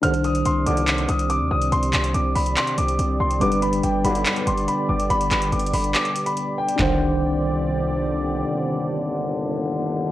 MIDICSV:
0, 0, Header, 1, 7, 480
1, 0, Start_track
1, 0, Key_signature, -3, "minor"
1, 0, Tempo, 422535
1, 35, Time_signature, 4, 2, 24, 8
1, 11494, End_track
2, 0, Start_track
2, 0, Title_t, "Grand piano"
2, 0, Program_c, 0, 0
2, 33, Note_on_c, 0, 89, 112
2, 237, Note_off_c, 0, 89, 0
2, 279, Note_on_c, 0, 87, 84
2, 481, Note_off_c, 0, 87, 0
2, 517, Note_on_c, 0, 84, 94
2, 720, Note_off_c, 0, 84, 0
2, 754, Note_on_c, 0, 86, 86
2, 1206, Note_off_c, 0, 86, 0
2, 1235, Note_on_c, 0, 87, 83
2, 1439, Note_off_c, 0, 87, 0
2, 1474, Note_on_c, 0, 86, 89
2, 1678, Note_off_c, 0, 86, 0
2, 1715, Note_on_c, 0, 87, 82
2, 1919, Note_off_c, 0, 87, 0
2, 1955, Note_on_c, 0, 84, 113
2, 2158, Note_off_c, 0, 84, 0
2, 2197, Note_on_c, 0, 84, 82
2, 2399, Note_off_c, 0, 84, 0
2, 2434, Note_on_c, 0, 86, 81
2, 2638, Note_off_c, 0, 86, 0
2, 2674, Note_on_c, 0, 83, 90
2, 2878, Note_off_c, 0, 83, 0
2, 2916, Note_on_c, 0, 84, 97
2, 3119, Note_off_c, 0, 84, 0
2, 3157, Note_on_c, 0, 86, 84
2, 3607, Note_off_c, 0, 86, 0
2, 3636, Note_on_c, 0, 84, 92
2, 3839, Note_off_c, 0, 84, 0
2, 3875, Note_on_c, 0, 86, 102
2, 4078, Note_off_c, 0, 86, 0
2, 4114, Note_on_c, 0, 83, 83
2, 4318, Note_off_c, 0, 83, 0
2, 4358, Note_on_c, 0, 79, 81
2, 4560, Note_off_c, 0, 79, 0
2, 4594, Note_on_c, 0, 83, 86
2, 5046, Note_off_c, 0, 83, 0
2, 5076, Note_on_c, 0, 84, 85
2, 5279, Note_off_c, 0, 84, 0
2, 5315, Note_on_c, 0, 83, 79
2, 5518, Note_off_c, 0, 83, 0
2, 5555, Note_on_c, 0, 86, 76
2, 5758, Note_off_c, 0, 86, 0
2, 5795, Note_on_c, 0, 83, 107
2, 5998, Note_off_c, 0, 83, 0
2, 6035, Note_on_c, 0, 83, 83
2, 6239, Note_off_c, 0, 83, 0
2, 6275, Note_on_c, 0, 86, 79
2, 6478, Note_off_c, 0, 86, 0
2, 6517, Note_on_c, 0, 83, 85
2, 6720, Note_off_c, 0, 83, 0
2, 6754, Note_on_c, 0, 86, 90
2, 7093, Note_off_c, 0, 86, 0
2, 7114, Note_on_c, 0, 83, 77
2, 7453, Note_off_c, 0, 83, 0
2, 7476, Note_on_c, 0, 79, 86
2, 7679, Note_off_c, 0, 79, 0
2, 7715, Note_on_c, 0, 79, 84
2, 9110, Note_off_c, 0, 79, 0
2, 11494, End_track
3, 0, Start_track
3, 0, Title_t, "Tine electric piano"
3, 0, Program_c, 1, 4
3, 20, Note_on_c, 1, 62, 77
3, 36, Note_on_c, 1, 51, 60
3, 52, Note_on_c, 1, 72, 74
3, 255, Control_c, 1, 64, 127
3, 3822, Note_off_c, 1, 62, 0
3, 3830, Note_off_c, 1, 51, 0
3, 3838, Note_off_c, 1, 72, 0
3, 3861, Note_on_c, 1, 55, 76
3, 3878, Note_on_c, 1, 62, 67
3, 3890, Control_c, 1, 64, 0
3, 3894, Note_on_c, 1, 71, 78
3, 4109, Control_c, 1, 64, 127
3, 7663, Note_off_c, 1, 55, 0
3, 7669, Note_off_c, 1, 62, 0
3, 7679, Note_off_c, 1, 71, 0
3, 7682, Note_on_c, 1, 62, 87
3, 7715, Note_on_c, 1, 51, 81
3, 7729, Control_c, 1, 64, 0
3, 7747, Note_on_c, 1, 72, 100
3, 7936, Control_c, 1, 64, 127
3, 11494, Note_off_c, 1, 51, 0
3, 11494, Note_off_c, 1, 62, 0
3, 11494, Note_off_c, 1, 72, 0
3, 11494, End_track
4, 0, Start_track
4, 0, Title_t, "Analog synth pad"
4, 0, Program_c, 2, 89
4, 37, Note_on_c, 2, 48, 83
4, 37, Note_on_c, 2, 60, 74
4, 37, Note_on_c, 2, 67, 74
4, 37, Note_on_c, 2, 74, 92
4, 3838, Note_off_c, 2, 48, 0
4, 3838, Note_off_c, 2, 60, 0
4, 3875, Note_on_c, 2, 50, 83
4, 3876, Note_on_c, 2, 59, 75
4, 7671, Note_off_c, 2, 67, 0
4, 7671, Note_off_c, 2, 74, 0
4, 7677, Note_off_c, 2, 50, 0
4, 7677, Note_off_c, 2, 59, 0
4, 7716, Note_on_c, 2, 67, 74
4, 7717, Note_on_c, 2, 48, 81
4, 7717, Note_on_c, 2, 60, 76
4, 7717, Note_on_c, 2, 74, 90
4, 11494, Note_off_c, 2, 48, 0
4, 11494, Note_off_c, 2, 60, 0
4, 11494, Note_off_c, 2, 67, 0
4, 11494, Note_off_c, 2, 74, 0
4, 11494, End_track
5, 0, Start_track
5, 0, Title_t, "Brass ensemble"
5, 0, Program_c, 3, 61
5, 35, Note_on_c, 3, 31, 78
5, 35, Note_on_c, 3, 39, 85
5, 35, Note_on_c, 3, 50, 95
5, 137, Note_off_c, 3, 31, 0
5, 137, Note_off_c, 3, 39, 0
5, 137, Note_off_c, 3, 50, 0
5, 755, Note_on_c, 3, 31, 86
5, 755, Note_on_c, 3, 39, 97
5, 755, Note_on_c, 3, 50, 109
5, 1211, Note_off_c, 3, 31, 0
5, 1211, Note_off_c, 3, 39, 0
5, 1211, Note_off_c, 3, 50, 0
5, 3876, Note_on_c, 3, 35, 83
5, 3876, Note_on_c, 3, 43, 84
5, 3876, Note_on_c, 3, 50, 89
5, 3978, Note_off_c, 3, 35, 0
5, 3978, Note_off_c, 3, 43, 0
5, 3978, Note_off_c, 3, 50, 0
5, 4595, Note_on_c, 3, 35, 103
5, 4595, Note_on_c, 3, 43, 100
5, 4595, Note_on_c, 3, 50, 118
5, 5051, Note_off_c, 3, 35, 0
5, 5051, Note_off_c, 3, 43, 0
5, 5051, Note_off_c, 3, 50, 0
5, 7715, Note_on_c, 3, 31, 94
5, 7715, Note_on_c, 3, 39, 92
5, 7715, Note_on_c, 3, 50, 100
5, 11494, Note_off_c, 3, 31, 0
5, 11494, Note_off_c, 3, 39, 0
5, 11494, Note_off_c, 3, 50, 0
5, 11494, End_track
6, 0, Start_track
6, 0, Title_t, "808-style bass"
6, 0, Program_c, 4, 38
6, 36, Note_on_c, 4, 36, 110
6, 496, Note_off_c, 4, 36, 0
6, 517, Note_on_c, 4, 36, 105
6, 747, Note_off_c, 4, 36, 0
6, 756, Note_on_c, 4, 36, 109
6, 1216, Note_off_c, 4, 36, 0
6, 1236, Note_on_c, 4, 36, 104
6, 1596, Note_on_c, 4, 39, 98
6, 1613, Note_off_c, 4, 36, 0
6, 1710, Note_off_c, 4, 39, 0
6, 1716, Note_on_c, 4, 36, 104
6, 1946, Note_off_c, 4, 36, 0
6, 1956, Note_on_c, 4, 36, 112
6, 2186, Note_off_c, 4, 36, 0
6, 2197, Note_on_c, 4, 36, 108
6, 2427, Note_off_c, 4, 36, 0
6, 2436, Note_on_c, 4, 36, 112
6, 2666, Note_off_c, 4, 36, 0
6, 2677, Note_on_c, 4, 36, 105
6, 2906, Note_off_c, 4, 36, 0
6, 3157, Note_on_c, 4, 36, 104
6, 3387, Note_off_c, 4, 36, 0
6, 3396, Note_on_c, 4, 36, 106
6, 3626, Note_off_c, 4, 36, 0
6, 3636, Note_on_c, 4, 36, 107
6, 3866, Note_off_c, 4, 36, 0
6, 3877, Note_on_c, 4, 31, 113
6, 4337, Note_off_c, 4, 31, 0
6, 4357, Note_on_c, 4, 31, 107
6, 4587, Note_off_c, 4, 31, 0
6, 4596, Note_on_c, 4, 31, 103
6, 4826, Note_off_c, 4, 31, 0
6, 5077, Note_on_c, 4, 31, 100
6, 5307, Note_off_c, 4, 31, 0
6, 5556, Note_on_c, 4, 31, 106
6, 5786, Note_off_c, 4, 31, 0
6, 5795, Note_on_c, 4, 31, 113
6, 6025, Note_off_c, 4, 31, 0
6, 6035, Note_on_c, 4, 31, 107
6, 6266, Note_off_c, 4, 31, 0
6, 6275, Note_on_c, 4, 31, 108
6, 6506, Note_off_c, 4, 31, 0
6, 6514, Note_on_c, 4, 31, 110
6, 6755, Note_off_c, 4, 31, 0
6, 7716, Note_on_c, 4, 36, 113
6, 9590, Note_off_c, 4, 36, 0
6, 11494, End_track
7, 0, Start_track
7, 0, Title_t, "Drums"
7, 35, Note_on_c, 9, 42, 79
7, 149, Note_off_c, 9, 42, 0
7, 156, Note_on_c, 9, 42, 66
7, 269, Note_off_c, 9, 42, 0
7, 275, Note_on_c, 9, 42, 79
7, 389, Note_off_c, 9, 42, 0
7, 395, Note_on_c, 9, 42, 61
7, 509, Note_off_c, 9, 42, 0
7, 515, Note_on_c, 9, 42, 74
7, 629, Note_off_c, 9, 42, 0
7, 755, Note_on_c, 9, 42, 81
7, 868, Note_off_c, 9, 42, 0
7, 875, Note_on_c, 9, 42, 61
7, 989, Note_off_c, 9, 42, 0
7, 995, Note_on_c, 9, 39, 126
7, 995, Note_on_c, 9, 42, 85
7, 1109, Note_off_c, 9, 39, 0
7, 1109, Note_off_c, 9, 42, 0
7, 1115, Note_on_c, 9, 42, 57
7, 1228, Note_off_c, 9, 42, 0
7, 1235, Note_on_c, 9, 42, 86
7, 1349, Note_off_c, 9, 42, 0
7, 1355, Note_on_c, 9, 42, 64
7, 1469, Note_off_c, 9, 42, 0
7, 1475, Note_on_c, 9, 42, 72
7, 1589, Note_off_c, 9, 42, 0
7, 1836, Note_on_c, 9, 42, 58
7, 1949, Note_off_c, 9, 42, 0
7, 1956, Note_on_c, 9, 42, 57
7, 2069, Note_off_c, 9, 42, 0
7, 2076, Note_on_c, 9, 42, 65
7, 2190, Note_off_c, 9, 42, 0
7, 2196, Note_on_c, 9, 39, 97
7, 2196, Note_on_c, 9, 42, 78
7, 2309, Note_off_c, 9, 42, 0
7, 2310, Note_off_c, 9, 39, 0
7, 2316, Note_on_c, 9, 42, 64
7, 2429, Note_off_c, 9, 42, 0
7, 2435, Note_on_c, 9, 42, 73
7, 2549, Note_off_c, 9, 42, 0
7, 2676, Note_on_c, 9, 46, 80
7, 2789, Note_off_c, 9, 46, 0
7, 2796, Note_on_c, 9, 42, 61
7, 2909, Note_off_c, 9, 42, 0
7, 2916, Note_on_c, 9, 39, 124
7, 2916, Note_on_c, 9, 42, 86
7, 3029, Note_off_c, 9, 42, 0
7, 3030, Note_off_c, 9, 39, 0
7, 3036, Note_on_c, 9, 42, 57
7, 3149, Note_off_c, 9, 42, 0
7, 3156, Note_on_c, 9, 42, 87
7, 3269, Note_off_c, 9, 42, 0
7, 3276, Note_on_c, 9, 42, 63
7, 3390, Note_off_c, 9, 42, 0
7, 3396, Note_on_c, 9, 42, 74
7, 3509, Note_off_c, 9, 42, 0
7, 3756, Note_on_c, 9, 42, 58
7, 3869, Note_off_c, 9, 42, 0
7, 3875, Note_on_c, 9, 42, 57
7, 3989, Note_off_c, 9, 42, 0
7, 3996, Note_on_c, 9, 42, 67
7, 4109, Note_off_c, 9, 42, 0
7, 4116, Note_on_c, 9, 42, 76
7, 4229, Note_off_c, 9, 42, 0
7, 4236, Note_on_c, 9, 42, 61
7, 4349, Note_off_c, 9, 42, 0
7, 4356, Note_on_c, 9, 42, 71
7, 4470, Note_off_c, 9, 42, 0
7, 4596, Note_on_c, 9, 42, 84
7, 4710, Note_off_c, 9, 42, 0
7, 4716, Note_on_c, 9, 42, 61
7, 4830, Note_off_c, 9, 42, 0
7, 4836, Note_on_c, 9, 39, 127
7, 4836, Note_on_c, 9, 42, 83
7, 4950, Note_off_c, 9, 39, 0
7, 4950, Note_off_c, 9, 42, 0
7, 4956, Note_on_c, 9, 42, 59
7, 5070, Note_off_c, 9, 42, 0
7, 5076, Note_on_c, 9, 42, 86
7, 5190, Note_off_c, 9, 42, 0
7, 5197, Note_on_c, 9, 42, 61
7, 5310, Note_off_c, 9, 42, 0
7, 5316, Note_on_c, 9, 42, 73
7, 5430, Note_off_c, 9, 42, 0
7, 5676, Note_on_c, 9, 42, 58
7, 5790, Note_off_c, 9, 42, 0
7, 5796, Note_on_c, 9, 42, 56
7, 5909, Note_off_c, 9, 42, 0
7, 5916, Note_on_c, 9, 42, 64
7, 6030, Note_off_c, 9, 42, 0
7, 6036, Note_on_c, 9, 39, 91
7, 6036, Note_on_c, 9, 42, 78
7, 6149, Note_off_c, 9, 42, 0
7, 6150, Note_off_c, 9, 39, 0
7, 6155, Note_on_c, 9, 42, 64
7, 6269, Note_off_c, 9, 42, 0
7, 6275, Note_on_c, 9, 42, 45
7, 6356, Note_off_c, 9, 42, 0
7, 6356, Note_on_c, 9, 42, 60
7, 6436, Note_off_c, 9, 42, 0
7, 6436, Note_on_c, 9, 42, 71
7, 6516, Note_on_c, 9, 46, 81
7, 6550, Note_off_c, 9, 42, 0
7, 6629, Note_off_c, 9, 46, 0
7, 6636, Note_on_c, 9, 42, 60
7, 6749, Note_off_c, 9, 42, 0
7, 6755, Note_on_c, 9, 42, 80
7, 6756, Note_on_c, 9, 39, 127
7, 6869, Note_off_c, 9, 39, 0
7, 6869, Note_off_c, 9, 42, 0
7, 6875, Note_on_c, 9, 42, 57
7, 6989, Note_off_c, 9, 42, 0
7, 6995, Note_on_c, 9, 42, 86
7, 7109, Note_off_c, 9, 42, 0
7, 7115, Note_on_c, 9, 42, 63
7, 7229, Note_off_c, 9, 42, 0
7, 7235, Note_on_c, 9, 42, 73
7, 7349, Note_off_c, 9, 42, 0
7, 7595, Note_on_c, 9, 42, 67
7, 7709, Note_off_c, 9, 42, 0
7, 7715, Note_on_c, 9, 36, 103
7, 7715, Note_on_c, 9, 38, 108
7, 7715, Note_on_c, 9, 39, 90
7, 7828, Note_off_c, 9, 38, 0
7, 7828, Note_off_c, 9, 39, 0
7, 7829, Note_off_c, 9, 36, 0
7, 11494, End_track
0, 0, End_of_file